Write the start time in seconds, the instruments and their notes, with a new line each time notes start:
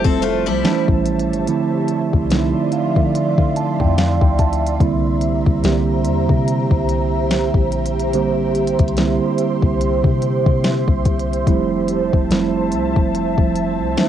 Already playing: ambient pad F3 C5 E5 A5, tine electric piano F3 G3 A3 C4 E4 F4
0.04 808-style bass F1, steel-string acoustic guitar C4 A4, kick
0.22 steel-string acoustic guitar A3 F4, closed hi-hat
0.46 808-style bass C2, steel-string acoustic guitar G3 E4
0.64 tine electric piano E3 G3 A3 C#4 D#4, snare, closed hi-hat
0.72 tine electric piano E4
0.88 808-style bass A1, kick
1.06 closed hi-hat
1.19 closed hi-hat
1.30 808-style bass G1, closed hi-hat
1.47 tine electric piano D3 F3 A3 C4 E4, ambient pad F3 D5 C6, closed hi-hat
1.88 closed hi-hat
2.13 808-style bass C2, kick
2.30 tine electric piano D3 F3 A3 C4 D#4, snare, closed hi-hat
2.38 tine electric piano E4
2.72 tine electric piano F5, closed hi-hat
2.96 808-style bass D3, tine electric piano E5, kick
3.14 tine electric piano D5, closed hi-hat
3.38 808-style bass D3, tine electric piano F5, kick
3.56 tine electric piano A5, closed hi-hat
3.80 808-style bass F2, tine electric piano G5, kick
3.98 tine electric piano F5, snare, closed hi-hat
4.21 808-style bass D2, tine electric piano G5, kick
4.39 tine electric piano A5, kick, closed hi-hat, open hi-hat
4.53 closed hi-hat
4.66 closed hi-hat
4.80 808-style bass C2, tine electric piano D3 G3 A#3 C4 E4, ambient pad G4 C5 A#5, kick, closed hi-hat
5.21 closed hi-hat
5.46 808-style bass C2, kick
5.63 808-style bass C2, tine electric piano D3 G3 A#3 C4 G4, snare, closed hi-hat
6.05 808-style bass E2, closed hi-hat
6.29 808-style bass C3, kick
6.48 closed hi-hat
6.71 808-style bass C2, kick
6.89 closed hi-hat
7.31 snare, closed hi-hat
7.54 808-style bass A#1, kick
7.72 closed hi-hat
7.86 closed hi-hat
8.00 closed hi-hat
8.13 tine electric piano D3 G3 A#3 C4 G4, ambient pad C6, closed hi-hat
8.55 closed hi-hat
8.67 closed hi-hat
8.79 808-style bass C2, kick, closed hi-hat
8.88 closed hi-hat
8.97 tine electric piano D3 G3 A#3 C4 E4, snare, closed hi-hat
9.38 closed hi-hat
9.63 808-style bass C2, kick
9.81 closed hi-hat
10.04 808-style bass C3, kick
10.22 closed hi-hat
10.46 808-style bass C3, kick
10.64 snare, closed hi-hat
10.88 808-style bass C2, kick
11.05 kick, closed hi-hat, open hi-hat
11.19 closed hi-hat
11.33 closed hi-hat
11.47 808-style bass F1, ambient pad F3 E5 A5, tine electric piano F3 G3 A3 C4 E4, kick, closed hi-hat
11.88 closed hi-hat
12.13 808-style bass F1, kick
12.30 808-style bass F1, tine electric piano F3 G3 A3 C4 E4, snare, closed hi-hat
12.72 808-style bass C2, closed hi-hat
12.96 808-style bass F1, kick
13.15 closed hi-hat
13.38 808-style bass F1, kick
13.56 closed hi-hat
13.80 808-style bass C2
13.97 tine electric piano E3 G3 A3 C#4 D#4, snare, closed hi-hat
14.05 tine electric piano E4